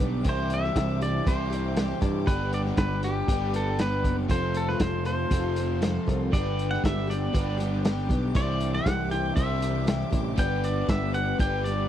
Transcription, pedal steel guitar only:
0.29 0.53 C5 medium
0.54 1.02 E5 loud
1.02 1.28 D5 medium
1.28 1.99 C5 medium
2.27 2.53 B4 medium
2.54 2.61 D5 loud
2.78 3.02 B4 medium
3.04 3.56 G4 medium
3.56 3.81 A4 medium
3.81 4.16 B4 medium
4.31 4.57 C5 medium
4.57 4.69 A4 medium
4.69 4.81 B4 medium
4.81 5.05 C5 medium
5.06 6.04 C5 medium
6.33 6.72 D5 medium
6.71 6.84 F#5 medium
6.85 7.10 E5 medium
7.10 7.57 D5 medium
8.36 8.75 D5 medium
8.75 9.11 F#5 medium
9.11 9.35 G5 loud
9.36 10.08 E5 medium
10.39 10.65 G5 loud
10.65 10.88 D5 medium
10.90 11.14 E5 medium
11.14 11.38 F#5 medium
11.40 11.66 G5 loud
11.64 11.88 D5 medium

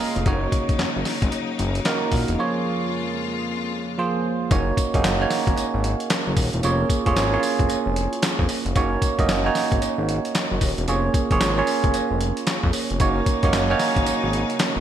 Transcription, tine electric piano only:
0.00 0.28 A#3 medium
0.00 0.28 F4 medium
0.00 0.28 G#4 medium
0.00 0.18 A#4 medium
0.00 0.28 C#5 medium
0.00 0.25 D#5 medium
0.00 0.28 F5 medium
0.00 0.28 G#5 medium
0.00 0.28 A#5 medium
0.26 0.34 A3 medium
0.26 1.11 D#4 medium
0.26 1.11 F#4 medium
0.26 1.11 C#5 medium
0.33 1.13 A#3 medium
1.85 2.30 A#3 medium
1.85 2.30 D#4 medium
1.85 2.30 F#4 medium
1.85 2.30 A#4 medium
2.39 3.23 F3 medium
2.39 3.23 A#3 medium
2.39 3.23 F4 medium
2.39 3.23 G#4 medium
2.39 3.23 C#5 medium
3.98 4.42 F3 medium
3.98 4.42 A#3 medium
3.98 4.43 F4 medium
3.98 4.43 G#4 medium
3.98 4.43 C5 loud
4.51 4.83 A#3 medium
4.51 4.83 C#4 medium
4.51 4.83 D#4 medium
4.51 4.84 F#4 medium
4.51 4.84 C#5 loud
4.94 5.13 A#3 medium
4.94 5.14 C#4 medium
4.94 5.14 D#4 medium
4.94 5.14 F#4 medium
4.94 5.14 G#4 medium
5.21 6.03 A#3 medium
5.21 6.03 C#4 medium
5.21 6.03 D#4 medium
5.21 6.03 F#4 medium
5.21 6.04 C#5 loud
6.63 6.96 A#3 medium
6.63 6.96 C#4 medium
6.63 6.96 F4 medium
6.63 6.96 G#4 medium
6.63 6.96 C#5 medium
7.06 7.26 A#3 medium
7.06 7.26 C#4 medium
7.06 7.26 F4 medium
7.06 7.26 G#4 medium
7.06 7.26 C#5 medium
7.33 8.15 A#3 medium
7.33 8.15 C#4 medium
7.33 7.38 E4 medium
7.33 8.15 G#4 medium
7.33 8.16 C#5 medium
7.40 8.19 F4 medium
8.76 9.08 A#3 medium
8.76 9.08 C#4 medium
8.76 9.08 D#4 medium
8.76 9.08 F#4 medium
8.76 9.09 C#5 loud
9.19 9.38 A#3 medium
9.19 9.38 C#4 medium
9.19 9.38 D#4 medium
9.19 9.39 F#4 medium
9.19 9.39 D#5 medium
9.45 10.28 A#3 medium
9.45 10.28 C#4 medium
9.45 10.28 D#4 medium
9.45 10.28 F#4 medium
9.45 10.28 C#5 loud
10.88 11.20 A#3 medium
10.88 11.21 C#4 medium
10.88 11.21 F4 medium
10.88 11.21 G#4 medium
10.88 11.21 C#5 medium
11.31 11.50 A#3 medium
11.31 11.51 C#4 medium
11.31 11.51 F4 medium
11.31 11.51 G#4 medium
11.31 11.51 C#5 medium
11.58 12.40 A#3 medium
11.58 12.40 C#4 medium
11.58 12.40 F4 medium
11.58 12.40 G#4 medium
11.58 12.41 C#5 medium
13.00 13.33 A#3 medium
13.00 13.33 C#4 medium
13.00 13.33 D#4 medium
13.00 13.33 F#4 medium
13.00 13.33 C#5 loud
13.43 13.63 A#3 medium
13.43 13.63 C#4 medium
13.43 13.63 D#4 medium
13.43 13.63 F#4 medium
13.43 13.63 C#5 medium
13.70 14.52 A#3 medium
13.70 14.52 C#4 medium
13.70 14.53 D#4 medium
13.70 14.53 F#4 medium
13.70 14.53 C#5 medium

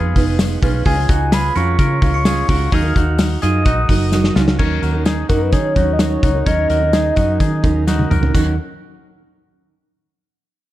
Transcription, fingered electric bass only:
0.00 0.12 F2 loud
0.16 0.56 F1 medium
0.63 0.82 B1 loud
0.86 1.06 C#2 loud
1.09 1.49 C#2 loud
1.56 1.76 F2 loud
1.79 1.99 C#3 loud
2.02 2.42 C#2 medium
2.49 2.69 C#2 medium
2.72 2.92 D#2 loud
2.96 3.36 D#2 loud
3.43 3.63 F#2 loud
3.66 3.86 A#1 loud
3.89 4.29 F#1 medium
4.36 4.56 C#2 loud
4.60 4.79 D#2 loud
4.82 5.22 D#2 medium
5.30 5.54 F#2 medium
5.53 5.73 D#3 loud
5.76 6.16 D#2 medium
6.23 6.43 C#2 medium
6.47 6.67 D#2 loud
6.70 7.10 D#2 medium
7.17 7.37 F#2 loud
7.40 7.60 D#3 loud
7.64 8.04 D#2 loud
8.11 8.31 C#2 medium
8.35 8.57 D#2 loud

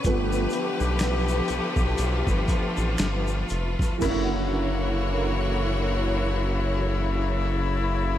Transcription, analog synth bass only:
0.05 0.47 G1 loud
0.80 1.41 B1 loud
1.50 1.61 B1 soft
1.77 1.95 B1 medium
1.99 2.23 B1 loud
2.27 2.46 G1 medium
2.78 2.96 A1 medium
2.99 3.44 G1 medium
3.51 3.76 F1 medium
4.03 8.18 F#1 loud

